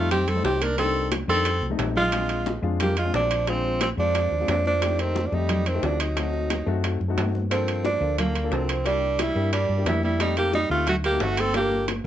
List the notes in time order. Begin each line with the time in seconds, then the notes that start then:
Already playing: F2 G3 A3 C4 D#4 F4
0.11 C4 G4, high bongo, high conga, low conga, high timbale
0.28 C4 A4, high bongo, high conga, low conga, high timbale
0.35 G3 A3 C4 D#4
0.44 C2 C4 G4, high bongo, low bongo, high conga, low timbale
0.61 D4 A#4, high conga, high timbale
0.77 G3 A#3 C4 D4 D#4 A4, high bongo, high timbale
0.95 high bongo, high conga
1.11 high bongo, high conga, high timbale, low timbale
1.28 F2 G3 A#3 C4 D4 D#4 A4, high bongo, high conga
1.45 high bongo, high conga, high timbale
1.61 C2, high bongo, high conga
1.70 G3 A3 C4 D#4
1.78 A#1, high bongo, low bongo, high timbale, low timbale
1.96 G#3 F4, low conga
2.11 G#3 C4 D4 F4, high bongo, high conga, high timbale
2.29 high bongo, high conga, high timbale
2.46 high bongo, high conga, low timbale
2.62 F2 G#3 C4 D4 F4, high bongo, high conga
2.80 A#3 G4, high bongo, high conga, low conga, high timbale
2.97 G#3 F4, high bongo, high conga, high timbale
3.04 G#3 C4 D4 F4
3.13 A#1 F3 D4, high bongo, low bongo, high conga, low timbale
3.31 high timbale
3.46 F3 G#3 C4 D4 F4, high bongo, high conga, high timbale
3.65 high bongo, high conga
3.81 F3 C4, high bongo, high conga, high timbale, low timbale
3.97 F2 F3 G#3 C4 D4 F4, high bongo, high conga
4.15 high bongo, high timbale
4.31 D#2, high bongo, high conga
4.39 G#3 C4 D4 F4
4.48 F2 F3 D4, high bongo, low bongo, high conga, high timbale, low timbale
4.66 F3 D4, high conga
4.81 A3 C4 D#4 G4, high bongo, high conga, high timbale
4.99 D#3 C4, high bongo, high conga, high timbale
5.16 high bongo, high conga, low timbale
5.26 F3 D4
5.32 F2 G3 A3 C4 D#4 G4, high bongo, high conga
5.49 high bongo, high conga, low conga, high timbale
5.66 D#3 C4, high bongo, high conga, high timbale
5.74 A3 C4 D#4 G4
5.83 D2 F3 D4, high bongo, low bongo, high conga, low timbale
6.00 F#3 D#4, high timbale
6.16 A3 C4 D#4 F#4, high bongo, high conga, high timbale
6.33 high bongo, high conga
6.50 high bongo, high conga, high timbale, low timbale
6.66 F#2 A3 C4 D#4 F#4, high bongo, high conga
6.84 high bongo, high timbale
7.00 F#2, high bongo, high conga
7.08 A3 C4 D#4 F#4
7.17 G2, high bongo, low bongo, high conga, high timbale, low timbale
7.35 high conga
7.50 F3 A#3 C4 D4 F4 A4, high bongo, high conga, high timbale
7.68 high bongo, high timbale
7.85 F3 D4, high bongo, high conga, low timbale
8.00 D2 A#3 D4 F4 A4, high bongo, high conga
8.18 D3 A#3, high bongo, high conga, low conga, high timbale
8.35 high bongo, high timbale
8.43 A#3 D4 F4 A4
8.51 C2 F3 C4, high bongo, low bongo, high conga, low timbale
8.69 high timbale
8.85 G3 A#3 D4 E4 G4, high bongo, high conga, high timbale
9.02 high bongo, high conga
9.19 G3 E4, high bongo, high conga, high timbale, low timbale
9.35 G2 A#3 D4 E4 G4, high bongo, high conga
9.53 G3 D4, high bongo, high timbale
9.69 G2, high bongo, high conga
9.77 A#3 D4 E4 G4
9.85 F2 G3 E4, high bongo, low bongo, high conga, high timbale, low timbale
10.03 G3 E4, high conga
10.19 G3 A3 C4 D#4 G4, high bongo, high conga, high timbale
10.37 A#3 G4, high bongo, high conga, high timbale
10.53 G3 D#4, high bongo, high conga, low timbale
10.69 D2 A3 C4 D#4 F4 G4, high bongo, high conga
10.87 A3 F#4, high bongo, high conga, low conga, high timbale
11.04 A#3 G4, high bongo, high timbale
11.11 A3 C4 D#4 F#4
11.20 G1 A3 F#4, high bongo, low bongo, low timbale
11.37 C4 A4, high conga, high timbale
11.53 A#3 D4 F4 G4 A4, high bongo, high conga, high timbale
11.71 high bongo, high conga
11.88 high bongo, high conga, high timbale, low timbale